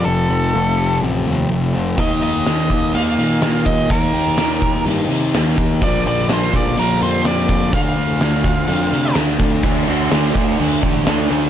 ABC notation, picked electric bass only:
X:1
M:4/4
L:1/8
Q:1/4=125
K:Dphr
V:1 name="Picked electric bass" clef=bass
F,,, F,,, F,,,2 A,,, E,, F,,, F,,, | E,, E,, E,, E,, E,, B,, B,,2 | E,, E,, E,,2 G,, C, E,, E,, | B,,, B,,, B,,, B,,, B,,, F,, F,,2 |
D,, D,, D,,2 F,, C, D,, D,, | D,, D,, D,, D,, D,, A,,, D,, D,, |]